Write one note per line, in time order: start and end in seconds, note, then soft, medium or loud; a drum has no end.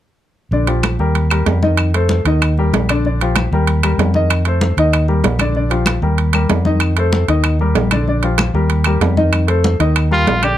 0.51 0.96 A#1 medium
0.51 0.65 D3 medium
0.51 0.66 D4 medium
0.51 0.66 D5 medium
0.51 high conga soft
0.67 0.94 F3 medium
0.67 0.94 F4 medium
0.67 0.94 G4 medium
0.67 high conga soft
0.67 high timbale medium
0.83 high conga medium
0.83 high timbale medium
0.83 low timbale medium
0.83 claves medium
0.99 1.43 D#2 medium
0.99 1.25 G3 medium
0.99 1.26 G4 medium
0.99 1.26 A#4 medium
0.99 high conga soft
1.15 high conga soft
1.15 high timbale medium
1.30 1.57 G3 medium
1.30 1.57 G4 medium
1.30 1.57 A#4 medium
1.30 high conga soft
1.30 high timbale medium
1.30 claves medium
1.46 2.20 F2 medium
1.46 high conga medium
1.46 high timbale medium
1.46 low timbale medium
1.63 1.89 D#3 medium
1.63 1.89 D#4 medium
1.63 1.89 D#5 medium
1.63 high conga medium
1.77 high conga soft
1.77 high timbale medium
1.77 claves medium
1.94 2.20 A3 medium
1.94 2.20 A4 medium
1.94 2.20 C5 medium
1.94 high conga soft
1.94 high timbale medium
2.09 high conga medium
2.09 low timbale medium
2.25 2.69 D#2 medium
2.25 2.52 D#3 medium
2.25 2.52 D#4 medium
2.25 2.53 D#5 medium
2.25 high conga soft
2.25 high timbale medium
2.42 high conga soft
2.42 high timbale medium
2.42 claves medium
2.57 2.84 G3 medium
2.57 2.84 G4 medium
2.57 2.84 A#4 medium
2.57 high conga soft
2.73 3.46 A#1 medium
2.73 high conga medium
2.73 high timbale medium
2.73 low timbale medium
2.89 3.02 D3 medium
2.89 3.02 D4 medium
2.89 3.03 D5 medium
2.89 high timbale medium
2.89 claves medium
3.05 3.18 D3 medium
3.05 3.19 D4 medium
3.05 3.18 D5 medium
3.05 high conga soft
3.21 3.47 F3 medium
3.21 3.47 F4 medium
3.21 3.47 G4 medium
3.21 high conga soft
3.21 high timbale medium
3.36 high conga medium
3.36 high timbale medium
3.36 low timbale medium
3.36 claves medium
3.52 3.95 D#2 medium
3.52 3.78 G3 medium
3.52 3.78 G4 medium
3.52 3.79 A#4 medium
3.52 high conga soft
3.67 high conga soft
3.67 high timbale medium
3.83 4.09 G3 medium
3.83 4.09 G4 medium
3.83 4.09 A#4 medium
3.83 high conga soft
3.83 high timbale medium
3.83 claves medium
3.98 4.71 F2 medium
3.98 high conga medium
3.98 high timbale medium
3.98 low timbale medium
4.14 4.41 D#3 medium
4.14 4.40 D#4 medium
4.14 4.41 D#5 medium
4.14 high conga medium
4.30 high conga soft
4.30 high timbale medium
4.30 claves medium
4.45 4.72 A3 medium
4.45 4.72 A4 medium
4.45 4.73 C5 medium
4.45 high conga soft
4.45 high timbale medium
4.61 high conga medium
4.61 low timbale medium
4.77 5.21 D#2 medium
4.77 5.04 D#3 medium
4.77 5.04 D#4 medium
4.77 5.04 D#5 medium
4.77 high conga soft
4.77 high timbale medium
4.93 high conga soft
4.93 high timbale medium
4.93 claves medium
5.08 5.34 G3 medium
5.08 5.34 G4 medium
5.08 5.34 A#4 medium
5.08 high conga soft
5.24 5.97 A#1 medium
5.24 high conga medium
5.24 high timbale medium
5.24 low timbale medium
5.39 5.53 D3 medium
5.39 5.53 D4 medium
5.39 5.53 D5 medium
5.39 high conga medium
5.39 high timbale medium
5.39 claves medium
5.55 5.69 D3 medium
5.55 5.69 D4 medium
5.55 5.69 D5 medium
5.55 high conga soft
5.70 5.97 F3 medium
5.70 5.97 F4 medium
5.70 5.97 G4 medium
5.70 high conga soft
5.70 high timbale medium
5.86 high conga medium
5.86 high timbale loud
5.86 low timbale medium
5.86 claves medium
6.02 6.46 D#2 medium
6.02 6.29 G3 medium
6.02 6.29 G4 medium
6.02 6.29 A#4 medium
6.02 high conga soft
6.18 high conga soft
6.18 high timbale medium
6.33 6.60 G3 medium
6.33 6.60 G4 medium
6.33 6.60 A#4 medium
6.33 high conga soft
6.33 high timbale medium
6.33 claves medium
6.49 7.23 F2 medium
6.49 high conga medium
6.49 high timbale medium
6.49 low timbale medium
6.65 6.91 D#3 medium
6.65 6.92 D#4 medium
6.65 6.92 D#5 medium
6.65 high conga medium
6.80 high conga soft
6.80 high timbale medium
6.80 claves medium
6.96 7.24 A3 medium
6.96 7.24 A4 medium
6.96 7.24 C5 medium
6.96 high conga soft
6.96 high timbale medium
7.12 high conga medium
7.12 low timbale medium
7.28 7.72 D#2 medium
7.28 7.54 D#3 medium
7.28 7.55 D#4 medium
7.28 7.55 D#5 medium
7.28 high conga soft
7.28 high timbale medium
7.44 high conga soft
7.44 high timbale medium
7.44 claves medium
7.59 7.86 G3 medium
7.59 7.86 G4 medium
7.59 7.86 A#4 medium
7.59 high conga soft
7.75 8.49 A#1 medium
7.75 high conga medium
7.75 high timbale medium
7.75 low timbale medium
7.91 8.05 D3 medium
7.91 8.05 D4 medium
7.91 8.05 D5 medium
7.91 high conga medium
7.91 high timbale medium
7.91 claves medium
8.08 8.21 D3 medium
8.08 8.21 D4 medium
8.08 8.21 D5 medium
8.08 high conga soft
8.23 8.49 F3 medium
8.23 8.49 F4 medium
8.23 8.50 G4 medium
8.23 high conga soft
8.23 high timbale medium
8.38 high conga medium
8.38 high timbale medium
8.38 low timbale medium
8.38 claves medium
8.54 8.98 D#2 medium
8.54 8.80 G3 medium
8.54 8.80 G4 medium
8.54 8.81 A#4 medium
8.54 high conga soft
8.70 high conga soft
8.70 high timbale medium
8.84 9.12 G3 medium
8.84 9.12 G4 medium
8.84 9.12 A#4 medium
8.84 high conga soft
8.84 high timbale medium
8.84 claves medium
9.01 9.74 F2 medium
9.01 high conga medium
9.01 high timbale medium
9.01 low timbale medium
9.17 9.43 D#3 medium
9.17 9.43 D#4 medium
9.17 9.43 D#5 medium
9.17 high conga medium
9.33 high conga soft
9.33 high timbale medium
9.33 claves medium
9.47 9.74 A3 medium
9.47 9.74 A4 medium
9.47 9.74 C5 medium
9.47 high conga soft
9.47 high timbale medium
9.64 high conga medium
9.64 low timbale medium
9.80 10.24 D#2 medium
9.80 10.06 D#3 medium
9.80 10.06 D#4 medium
9.80 10.06 D#5 medium
9.80 high conga soft
9.80 high timbale medium
9.96 high conga soft
9.96 high timbale medium
9.96 claves medium
10.11 10.37 G3 medium
10.11 10.45 F4 medium
10.11 10.38 G4 medium
10.11 10.38 A#4 medium
10.11 high conga soft
10.27 10.58 A#1 medium
10.27 high conga medium
10.27 high timbale medium
10.27 low timbale medium
10.43 10.56 D3 medium
10.43 10.56 D4 medium
10.43 10.58 G4 medium
10.43 10.57 D5 medium
10.43 high timbale medium
10.43 claves medium